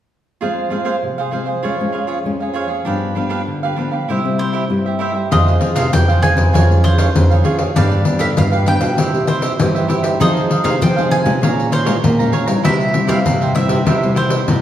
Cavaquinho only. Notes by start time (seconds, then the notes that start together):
0.41 F4 G#4 C5 F5
0.70 F4 G#4 C5 F5
0.85 F4 G#4 C5 F5
1.18 G#4 C5 F5
1.31 F4 G#4 C5 F5
1.46 G#4 C5 F5
1.63 F4 G#4 C#5 F5
1.92 F4 G#4 C#5 F5
2.07 F4 G#4 C#5 F5
2.40 G#4 C#5 F5
2.54 F4 G#4 C#5 F5
2.68 G#4 C#5 F5
2.85 D4 G4 B4 F5
3.15 D4 G4 B4 F5
3.29 D4 G4 B4 F5
3.63 G4 B4 F5
3.76 D4 G4 B4 F5
3.91 G4 B4 F5
4.08 E4 G4 C5 E5
4.38 E4 G4 C5 E5
4.53 E4 G4 C5 E5
4.86 G4 C5 E5
4.99 E4 G4 C5 E5
5.13 G4 C5 E5
5.31 F4 G#4 C5 F5
5.60 F4 G#4 C5 F5
5.75 F4 G#4 C5 F5
6.08 G#4 C5 F5
6.21 F4 G#4 C5 F5
6.36 G#4 C5 F5
6.53 F4 G#4 C#5 F5
6.83 F4 G#4 C#5 F5
6.98 F4 G#4 C#5 F5
7.30 G#4 C#5 F5
7.44 F4 G#4 C#5 F5
7.58 G#4 C#5 F5
7.76 D4 G4 B4 F5
8.05 D4 G4 B4 F5
8.19 D4 G4 B4 F5
8.52 G4 B4 F5
8.66 D4 G4 B4 F5
8.80 G4 B4 F5
8.98 E4 G4 C5 E5
9.27 E4 G4 C5 E5
9.41 E4 G4 C5 E5
9.75 G4 C5 E5
9.88 E4 G4 C5 E5
10.03 G4 C5 E5
10.20 D#4 G#4 C5 F5
10.49 D#4 G#4 C5 F5
10.64 D#4 G#4 C5 F5
10.96 G#4 C5 F5
11.10 D#4 G#4 C5 F5
11.24 G#4 C5 F5
11.42 G#4 C#5 F5 A#5
11.71 G#4 C#5 F5 A#5
11.85 G#4 C#5 F5 A#5
12.19 C#5 F5 A#5
12.32 G#4 C#5 F5 A#5
12.46 C#5 F5 A#5
12.63 E4 G4 C5 E5
12.93 E4 G4 C5 E5
13.07 E4 G4 C5 E5
13.41 G4 C5 E5
13.54 E4 G4 C5 E5
13.68 G4 C5 E5
13.85 E4 G4 C5 E5
14.15 E4 G4 C5 E5
14.29 E4 G4 C5 E5